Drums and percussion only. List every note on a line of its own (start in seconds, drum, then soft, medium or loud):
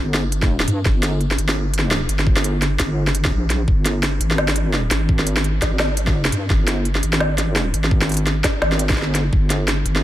0.14 snare medium
0.32 closed hi-hat medium
0.42 kick medium
0.42 snare soft
0.60 snare medium
0.68 closed hi-hat medium
0.85 kick loud
0.85 snare medium
1.03 snare medium
1.03 closed hi-hat medium
1.21 closed hi-hat soft
1.31 snare medium
1.38 closed hi-hat medium
1.49 snare medium
1.74 closed hi-hat medium
1.79 snare medium
1.91 snare medium
2.09 closed hi-hat medium
2.19 snare soft
2.27 kick loud
2.37 snare medium
2.44 closed hi-hat medium
2.62 snare soft
2.62 closed hi-hat soft
2.80 kick medium
2.80 snare medium
2.80 closed hi-hat medium
3.07 snare medium
3.15 closed hi-hat medium
3.25 kick medium
3.25 snare medium
3.50 snare medium
3.50 closed hi-hat medium
3.68 kick loud
3.86 snare medium
3.86 closed hi-hat medium
4.03 snare medium
4.03 closed hi-hat soft
4.21 closed hi-hat medium
4.31 snare medium
4.38 snare loud
4.48 snare medium
4.56 closed hi-hat medium
4.74 snare medium
4.91 snare medium
4.91 closed hi-hat medium
5.09 kick loud
5.19 snare soft
5.27 closed hi-hat medium
5.37 snare medium
5.44 closed hi-hat soft
5.62 kick medium
5.62 snare medium
5.62 closed hi-hat medium
5.79 snare loud
5.79 snare medium
5.97 closed hi-hat medium
6.07 kick loud
6.07 snare medium
6.25 snare medium
6.32 closed hi-hat medium
6.50 kick loud
6.50 snare soft
6.68 snare medium
6.68 closed hi-hat medium
6.85 closed hi-hat soft
6.95 snare soft
7.03 closed hi-hat medium
7.13 snare medium
7.20 snare loud
7.38 snare soft
7.38 closed hi-hat medium
7.56 snare medium
7.74 closed hi-hat medium
7.84 snare soft
7.91 kick loud
8.02 snare medium
8.09 closed hi-hat soft
8.12 closed hi-hat soft
8.14 closed hi-hat soft
8.17 closed hi-hat medium
8.27 snare soft
8.27 closed hi-hat soft
8.44 kick medium
8.44 snare medium
8.44 closed hi-hat medium
8.62 snare loud
8.72 snare soft
8.79 closed hi-hat medium
8.89 kick loud
8.89 snare medium
8.93 snare medium
8.97 snare soft
9.02 snare soft
9.15 snare soft
9.15 closed hi-hat medium
9.33 kick loud
9.50 snare soft
9.50 closed hi-hat medium
9.68 snare medium
9.68 closed hi-hat soft
9.86 closed hi-hat medium
9.96 snare soft